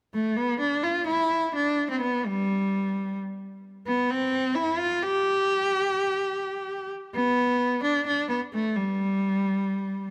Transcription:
0.14 A3
0.37 B3
0.60 D4
0.83 F4
1.07 E4
1.55 D4
1.91 C4
2.01 B3
2.26 G3
3.87 B3
4.10 C4
4.55 E4
4.79 F4
5.03 G4
7.15 B3
7.84 D4
8.07 D4
8.29 B3
8.53 A3
8.76 G3

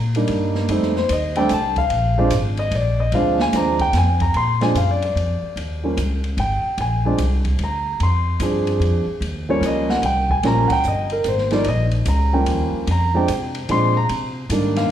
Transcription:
Already playing: A#2
0.15 G3 A#3 D4 D#4, ride
0.28 G2, ride
0.55 snare
0.69 F2 G3 A3 C4 D#4, ride
0.82 snare
0.96 C5, snare
1.09 D#2 D#5, hi-hat pedal, ride
1.35 G3 A3 C4 D4 G5, ride
1.48 C2 G#5, hi-hat pedal, ride
1.53 A5
1.76 F5, kick, ride
1.90 A#1, ride
2.18 F3 G#3 C4 D4
2.30 G#1, hi-hat pedal, ride
2.57 D#5, ride
2.71 A#1, ride
2.75 D5
3.00 D#5
3.12 D2 F3 G#3 C4 D4 F5, ride
3.39 G#5, snare
3.53 D#2 F3 G#3 C4 D4 A#5, snare, hi-hat pedal, ride
3.79 G5, kick, ride
3.93 F2, snare, hi-hat pedal, ride
3.97 G#5
4.20 A#5, kick, ride
4.34 A#2 C6, ride
4.61 F3 G#3 C4 D4 G#5, snare, ride
4.75 F#2 F5, hi-hat pedal, ride
4.91 D5
5.02 D5, ride
5.15 F2, ride
5.42 muted upright bass stroke
5.56 D#2, ride
5.83 F3 G3 A#3 C#4
5.97 C#2, hi-hat pedal, ride
6.24 ride
6.37 G#1 G5, ride
6.64 muted upright bass stroke
6.78 A#1 G#5, ride
7.05 F3 G#3 C4 D4
7.18 C2, hi-hat pedal, ride
7.45 kick, ride
7.59 D2, ride
7.64 A#5
8.00 F2 C6, ride
8.40 G2 F3 C4 D4 G#4, hi-hat pedal, ride
8.67 ride
8.80 F2, ride
9.06 muted upright bass stroke
9.20 D#2, ride
9.49 F3 G3 A#3 C#4 C#5
9.61 C#2, hi-hat pedal, ride
9.66 D#5
9.89 F#5, snare
10.02 C2 G5, ride
10.30 G#5, kick
10.43 A#1 F3 G3 A#3 C#4 A#5, snare, ride
10.68 F#5, muted upright bass stroke, kick, ride
10.72 G5
10.83 G1, hi-hat pedal
10.88 D#5
11.10 A#4, ride
11.24 G#1, hi-hat pedal, ride
11.28 C5
11.38 snare
11.51 F3 G3 A#3 D#4 D5, snare, ride
11.64 A#1, ride
11.68 D#5
11.91 ride
12.06 C#2 A#5, hi-hat pedal, ride
12.33 F3 G3 A#3 C#4 G5
12.46 D#2, ride
12.73 muted upright bass stroke
12.87 F2, ride
12.91 A#5
13.14 F3 G#3 C4 D4 G5
13.28 C3, hi-hat pedal, ride
13.55 ride
13.69 A#2 F3 G#3 C4 D4 C6, ride
13.97 A#5
14.09 C3, ride
14.49 G#2 D#3 G3 A#3 D4, hi-hat pedal, ride
14.76 F5, snare, ride

